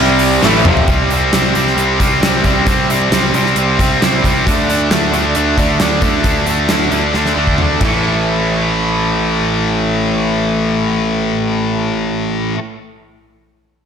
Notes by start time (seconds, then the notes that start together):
Already playing: C2 C3 G3 C4
0.19 open hi-hat
0.43 A1 A2 E3 A3, snare
0.64 F1 F2 C3 F3, mid tom
0.77 floor tom
0.88 C2 C3 G3 C4, kick, closed hi-hat
1.10 C3 G3 C4, closed hi-hat
1.32 C2 C3 G3 C4, snare, closed hi-hat
1.54 C2 C3 G3 C4, closed hi-hat
1.67 snare
1.75 C2 C3 G3 C4, closed hi-hat
1.99 C2 C3 G3 C4, kick, closed hi-hat
2.21 C2 C3 G3 C4, snare, closed hi-hat
2.44 C2 C3 G3 C4, kick, closed hi-hat
2.66 C2 C3 G3 C4, kick, closed hi-hat
2.89 C2 C3 G3 C4, closed hi-hat
3.10 C2 C3 G3 C4, snare, closed hi-hat
3.34 C2 C3 G3 C4, closed hi-hat
3.46 snare
3.56 C2 C3 G3 C4, closed hi-hat
3.79 C2 C3 G3 C4, kick, closed hi-hat
4.00 C2 C3 G3 C4, snare, closed hi-hat
4.24 C2 C3 G3 C4, kick, closed hi-hat
4.46 D2 D3 A3 D4, kick, closed hi-hat
4.68 D3 A3 D4, closed hi-hat
4.91 D2 D3 A3 D4, snare, closed hi-hat
5.12 D2 D3 A3 D4, closed hi-hat
5.35 D2 D3 A3 D4, closed hi-hat
5.58 D2 D3 A3 D4, kick, closed hi-hat
5.80 D2 D3 A3 D4, snare, closed hi-hat
6.02 D2 D3 A3 D4, kick, closed hi-hat
6.24 D2 D3 A3 D4, kick, closed hi-hat
6.45 D2 D3 A3 D4, closed hi-hat
6.49 D3 A3
6.68 D2 D3 A3 D4, snare, closed hi-hat
6.90 D2 D3 A3 D4, closed hi-hat
7.12 D2 D3 A3 D4, snare
7.16 D3
7.26 snare
7.34 D2 D3 A3 D4
7.39 A3 D4
7.47 kick
7.58 D2 D3 A3 D4, mid tom
7.62 D3 D4
7.80 A1 A2 E3 A3, kick, crash